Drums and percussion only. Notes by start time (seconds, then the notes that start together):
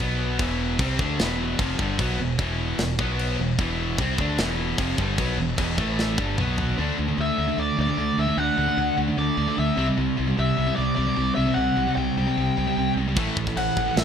0.39 kick, crash
0.79 kick, crash
0.99 kick
1.19 snare, crash
1.59 kick, crash
1.79 kick
1.99 kick, crash
2.39 kick, crash
2.79 snare, crash
2.99 kick
3.19 crash
3.59 kick, crash
3.98 kick, crash
4.18 kick
4.38 snare, crash
4.78 kick, crash
4.98 kick
5.18 kick, crash
5.58 kick, crash
5.78 kick
5.99 snare
6.18 kick
6.38 mid tom
6.58 floor tom
13.17 kick, crash
13.37 kick
13.47 kick
13.57 crash
13.77 kick
13.97 snare, crash